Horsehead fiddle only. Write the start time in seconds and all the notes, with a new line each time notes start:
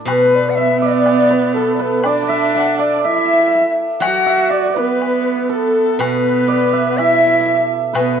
0.08 B3
2.04 D4
3.04 E4
4.03 F#4
4.78 B3
6.02 B3
6.99 E4
7.97 B3